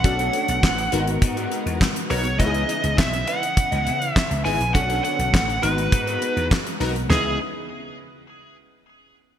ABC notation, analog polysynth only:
X:1
M:4/4
L:1/16
Q:1/4=102
K:C#dor
V:1 name="Analog polysynth"
[C=DF=A]4 z2 [B,^DF^A]6 z2 [B,DFA] z | [B,DEFG]4 z8 z2 [B,DEG] z | [C=DF=A]4 z2 [B,^DF^a]6 z2 [B,DF^A] z | [B,DEG]2 z12 z2 |]